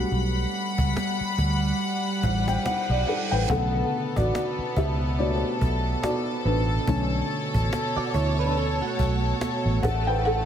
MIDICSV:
0, 0, Header, 1, 8, 480
1, 0, Start_track
1, 0, Tempo, 845070
1, 66, Time_signature, 4, 2, 24, 8
1, 5937, End_track
2, 0, Start_track
2, 0, Title_t, "Felt piano"
2, 0, Program_c, 0, 0
2, 0, Control_c, 0, 64, 127
2, 0, Note_on_c, 0, 55, 73
2, 0, Note_on_c, 0, 57, 62
2, 0, Note_on_c, 0, 59, 64
2, 0, Note_on_c, 0, 61, 53
2, 0, Note_on_c, 0, 62, 65
2, 0, Note_on_c, 0, 66, 77
2, 0, Note_on_c, 0, 69, 62
2, 1270, Note_on_c, 0, 78, 73
2, 1398, Note_off_c, 0, 78, 0
2, 1408, Note_on_c, 0, 79, 71
2, 1500, Note_off_c, 0, 79, 0
2, 1510, Note_on_c, 0, 78, 75
2, 1638, Note_off_c, 0, 78, 0
2, 1649, Note_on_c, 0, 74, 72
2, 1717, Note_off_c, 0, 55, 0
2, 1721, Note_off_c, 0, 57, 0
2, 1725, Note_off_c, 0, 59, 0
2, 1728, Note_off_c, 0, 62, 0
2, 1732, Note_off_c, 0, 66, 0
2, 1745, Note_on_c, 0, 78, 95
2, 1755, Note_off_c, 0, 69, 0
2, 1755, Note_on_c, 0, 69, 75
2, 1880, Note_off_c, 0, 69, 0
2, 1882, Note_on_c, 0, 79, 98
2, 1889, Note_off_c, 0, 78, 0
2, 1893, Note_on_c, 0, 71, 84
2, 1965, Note_off_c, 0, 74, 0
2, 1983, Note_off_c, 0, 71, 0
2, 1986, Note_on_c, 0, 78, 110
2, 1988, Note_off_c, 0, 79, 0
2, 1988, Note_on_c, 0, 50, 58
2, 1992, Note_on_c, 0, 57, 53
2, 1993, Control_c, 0, 64, 0
2, 1996, Note_off_c, 0, 61, 0
2, 1996, Note_on_c, 0, 49, 67
2, 1997, Note_on_c, 0, 69, 84
2, 2086, Control_c, 0, 64, 127
2, 2342, Note_off_c, 0, 78, 0
2, 2348, Note_off_c, 0, 69, 0
2, 2364, Note_on_c, 0, 74, 97
2, 2373, Note_on_c, 0, 66, 77
2, 2682, Note_off_c, 0, 74, 0
2, 2684, Note_off_c, 0, 50, 0
2, 2686, Note_off_c, 0, 57, 0
2, 2687, Note_off_c, 0, 66, 0
2, 2688, Note_off_c, 0, 49, 0
2, 2707, Note_on_c, 0, 76, 87
2, 2715, Note_on_c, 0, 67, 73
2, 2934, Note_off_c, 0, 67, 0
2, 2946, Note_on_c, 0, 74, 94
2, 2947, Note_on_c, 0, 62, 50
2, 2951, Note_on_c, 0, 57, 48
2, 2952, Note_on_c, 0, 73, 55
2, 2953, Note_off_c, 0, 76, 0
2, 2955, Note_on_c, 0, 66, 77
2, 3164, Note_off_c, 0, 62, 0
2, 3165, Note_off_c, 0, 57, 0
2, 3166, Note_off_c, 0, 73, 0
2, 3403, Note_off_c, 0, 74, 0
2, 3408, Note_off_c, 0, 66, 0
2, 3423, Note_on_c, 0, 74, 89
2, 3432, Note_on_c, 0, 66, 72
2, 3652, Note_off_c, 0, 66, 0
2, 3665, Note_on_c, 0, 71, 90
2, 3672, Note_off_c, 0, 74, 0
2, 3674, Note_on_c, 0, 62, 56
2, 3909, Note_on_c, 0, 50, 61
2, 3911, Note_on_c, 0, 57, 56
2, 3915, Note_on_c, 0, 61, 66
2, 4241, Note_off_c, 0, 50, 0
2, 4243, Note_off_c, 0, 57, 0
2, 4244, Note_off_c, 0, 61, 0
2, 4363, Note_off_c, 0, 71, 0
2, 4367, Note_off_c, 0, 62, 0
2, 5580, Note_on_c, 0, 78, 95
2, 5592, Control_c, 0, 64, 0
2, 5593, Note_on_c, 0, 69, 79
2, 5682, Control_c, 0, 64, 127
2, 5719, Note_off_c, 0, 69, 0
2, 5721, Note_on_c, 0, 79, 99
2, 5727, Note_off_c, 0, 78, 0
2, 5731, Note_on_c, 0, 71, 81
2, 5822, Note_off_c, 0, 71, 0
2, 5822, Note_on_c, 0, 78, 111
2, 5827, Note_off_c, 0, 79, 0
2, 5834, Note_on_c, 0, 69, 87
2, 5937, Note_off_c, 0, 69, 0
2, 5937, Note_off_c, 0, 78, 0
2, 5937, End_track
3, 0, Start_track
3, 0, Title_t, "Clean electric guitar"
3, 0, Program_c, 1, 27
3, 4524, Note_on_c, 1, 74, 77
3, 4527, Note_on_c, 1, 66, 69
3, 4620, Note_off_c, 1, 74, 0
3, 4622, Note_off_c, 1, 66, 0
3, 4625, Note_on_c, 1, 73, 87
3, 4629, Note_on_c, 1, 64, 73
3, 4758, Note_off_c, 1, 73, 0
3, 4760, Note_off_c, 1, 64, 0
3, 4766, Note_on_c, 1, 71, 87
3, 4769, Note_on_c, 1, 62, 76
3, 4861, Note_off_c, 1, 71, 0
3, 4863, Note_off_c, 1, 62, 0
3, 4867, Note_on_c, 1, 69, 84
3, 4870, Note_on_c, 1, 61, 69
3, 4999, Note_off_c, 1, 69, 0
3, 5000, Note_off_c, 1, 61, 0
3, 5006, Note_on_c, 1, 66, 75
3, 5010, Note_on_c, 1, 57, 64
3, 5564, Note_off_c, 1, 66, 0
3, 5565, Note_off_c, 1, 57, 0
3, 5937, End_track
4, 0, Start_track
4, 0, Title_t, "String section"
4, 0, Program_c, 2, 48
4, 0, Note_on_c, 2, 55, 81
4, 0, Note_on_c, 2, 78, 76
4, 0, Note_on_c, 2, 83, 92
4, 1966, Note_off_c, 2, 55, 0
4, 1966, Note_off_c, 2, 78, 0
4, 1966, Note_off_c, 2, 83, 0
4, 1986, Note_on_c, 2, 47, 80
4, 1986, Note_on_c, 2, 59, 78
4, 1986, Note_on_c, 2, 69, 92
4, 3887, Note_off_c, 2, 59, 0
4, 3903, Note_on_c, 2, 73, 73
4, 5563, Note_off_c, 2, 47, 0
4, 5563, Note_off_c, 2, 69, 0
4, 5567, Note_off_c, 2, 73, 0
4, 5585, Note_on_c, 2, 69, 89
4, 5586, Note_on_c, 2, 57, 73
4, 5587, Note_on_c, 2, 49, 82
4, 5937, Note_off_c, 2, 49, 0
4, 5937, Note_off_c, 2, 57, 0
4, 5937, Note_off_c, 2, 69, 0
4, 5937, End_track
5, 0, Start_track
5, 0, Title_t, "Fingered electric bass"
5, 0, Program_c, 3, 33
5, 65, Note_on_c, 3, 35, 98
5, 252, Note_off_c, 3, 35, 0
5, 445, Note_on_c, 3, 37, 79
5, 523, Note_off_c, 3, 37, 0
5, 786, Note_on_c, 3, 38, 89
5, 972, Note_off_c, 3, 38, 0
5, 1268, Note_on_c, 3, 33, 99
5, 1454, Note_off_c, 3, 33, 0
5, 1644, Note_on_c, 3, 35, 92
5, 1723, Note_off_c, 3, 35, 0
5, 1886, Note_on_c, 3, 33, 84
5, 1964, Note_off_c, 3, 33, 0
5, 1986, Note_on_c, 3, 35, 106
5, 2172, Note_off_c, 3, 35, 0
5, 2365, Note_on_c, 3, 33, 86
5, 2443, Note_off_c, 3, 33, 0
5, 2707, Note_on_c, 3, 37, 85
5, 3080, Note_off_c, 3, 37, 0
5, 3189, Note_on_c, 3, 35, 94
5, 3374, Note_off_c, 3, 35, 0
5, 3664, Note_on_c, 3, 33, 94
5, 3851, Note_off_c, 3, 33, 0
5, 3905, Note_on_c, 3, 35, 120
5, 4092, Note_off_c, 3, 35, 0
5, 4285, Note_on_c, 3, 33, 84
5, 4364, Note_off_c, 3, 33, 0
5, 4625, Note_on_c, 3, 38, 83
5, 4999, Note_off_c, 3, 38, 0
5, 5107, Note_on_c, 3, 35, 89
5, 5293, Note_off_c, 3, 35, 0
5, 5483, Note_on_c, 3, 33, 90
5, 5562, Note_off_c, 3, 33, 0
5, 5585, Note_on_c, 3, 33, 103
5, 5937, Note_off_c, 3, 33, 0
5, 5937, End_track
6, 0, Start_track
6, 0, Title_t, "Reverse cymbal"
6, 0, Program_c, 4, 119
6, 1025, Note_on_c, 4, 60, 78
6, 1985, Note_off_c, 4, 60, 0
6, 5937, End_track
7, 0, Start_track
7, 0, Title_t, "Cajon"
7, 67, Note_on_c, 9, 38, 42
7, 124, Note_off_c, 9, 38, 0
7, 305, Note_on_c, 9, 38, 32
7, 362, Note_off_c, 9, 38, 0
7, 444, Note_on_c, 9, 36, 91
7, 501, Note_off_c, 9, 36, 0
7, 549, Note_on_c, 9, 38, 108
7, 605, Note_off_c, 9, 38, 0
7, 785, Note_on_c, 9, 36, 80
7, 842, Note_off_c, 9, 36, 0
7, 1024, Note_on_c, 9, 38, 38
7, 1081, Note_off_c, 9, 38, 0
7, 1268, Note_on_c, 9, 36, 87
7, 1325, Note_off_c, 9, 36, 0
7, 1407, Note_on_c, 9, 38, 86
7, 1464, Note_off_c, 9, 38, 0
7, 1509, Note_on_c, 9, 38, 115
7, 1566, Note_off_c, 9, 38, 0
7, 1748, Note_on_c, 9, 38, 39
7, 1805, Note_off_c, 9, 38, 0
7, 1986, Note_on_c, 9, 36, 111
7, 2043, Note_off_c, 9, 36, 0
7, 2227, Note_on_c, 9, 38, 31
7, 2284, Note_off_c, 9, 38, 0
7, 2366, Note_on_c, 9, 36, 95
7, 2422, Note_off_c, 9, 36, 0
7, 2470, Note_on_c, 9, 38, 107
7, 2527, Note_off_c, 9, 38, 0
7, 2706, Note_on_c, 9, 36, 79
7, 2763, Note_off_c, 9, 36, 0
7, 2946, Note_on_c, 9, 38, 39
7, 3003, Note_off_c, 9, 38, 0
7, 3189, Note_on_c, 9, 36, 89
7, 3246, Note_off_c, 9, 36, 0
7, 3428, Note_on_c, 9, 38, 113
7, 3485, Note_off_c, 9, 38, 0
7, 3667, Note_on_c, 9, 38, 40
7, 3723, Note_off_c, 9, 38, 0
7, 3905, Note_on_c, 9, 36, 119
7, 3962, Note_off_c, 9, 36, 0
7, 4147, Note_on_c, 9, 38, 32
7, 4204, Note_off_c, 9, 38, 0
7, 4285, Note_on_c, 9, 36, 92
7, 4342, Note_off_c, 9, 36, 0
7, 4389, Note_on_c, 9, 38, 108
7, 4446, Note_off_c, 9, 38, 0
7, 4626, Note_on_c, 9, 36, 85
7, 4682, Note_off_c, 9, 36, 0
7, 4863, Note_on_c, 9, 38, 39
7, 4920, Note_off_c, 9, 38, 0
7, 5108, Note_on_c, 9, 36, 88
7, 5164, Note_off_c, 9, 36, 0
7, 5347, Note_on_c, 9, 38, 120
7, 5403, Note_off_c, 9, 38, 0
7, 5585, Note_on_c, 9, 36, 116
7, 5642, Note_off_c, 9, 36, 0
7, 5826, Note_on_c, 9, 38, 42
7, 5883, Note_off_c, 9, 38, 0
7, 5937, End_track
8, 0, Start_track
8, 0, Title_t, "Muted fingered electric bass strokes"
8, 684, Note_on_c, 9, 29, 48
8, 741, Note_off_c, 9, 29, 0
8, 1505, Note_on_c, 9, 29, 46
8, 1562, Note_off_c, 9, 29, 0
8, 2604, Note_on_c, 9, 29, 47
8, 2660, Note_off_c, 9, 29, 0
8, 4523, Note_on_c, 9, 29, 49
8, 4580, Note_off_c, 9, 29, 0
8, 5937, End_track
0, 0, End_of_file